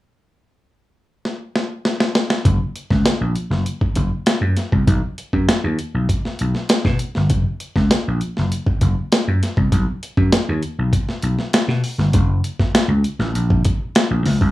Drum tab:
HH |----------------|x-x-x-x-x-x-x-x-|x-x-x-x-x-x-x-x-|x-x-x-x-x-x-x-x-|
SD |--------o-o-oooo|---oo--o----o-o-|----o----o-ooo-o|---oo--o----o-o-|
BD |----------------|o--o-----oo----o|o--o----o----o--|o--o-----oo----o|

HH |x-x-x-x-x-x-x-o-|x-x-x-x-x-x-x-o-|
SD |----o----o-ooo-o|---oo--o----o-o-|
BD |o--o----o-------|o--o-----oo----o|